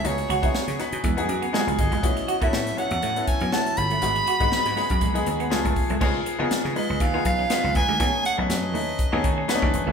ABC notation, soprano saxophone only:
X:1
M:4/4
L:1/16
Q:"Swing 16ths" 1/4=121
K:C#m
V:1 name="Soprano saxophone"
c8 z6 d2- | d3 e3 f4 g2 a2 b2- | b12- b2 z2 | z6 d2 ^e2 e4 g2 |
g2 f2 d8 z4 |]